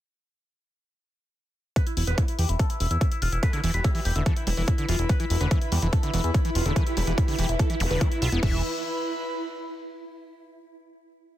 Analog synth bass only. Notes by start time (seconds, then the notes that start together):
1.97 E1
2.07 E1
2.39 E2
2.49 E1
2.80 E1
2.91 E2
3.22 E1
3.32 E1
3.64 E1
3.74 E1
4.05 E1
4.16 E1
4.47 E1
4.57 E1
4.89 E1
4.99 E1
5.30 E1
5.41 E1
5.72 E2
5.82 E1
6.14 E1
6.24 E2
6.55 E1
6.66 E1
6.97 E1
7.07 E1
7.39 E1
7.49 E1
7.80 E1
7.91 E1
8.22 B1
8.32 E1
8.43 E1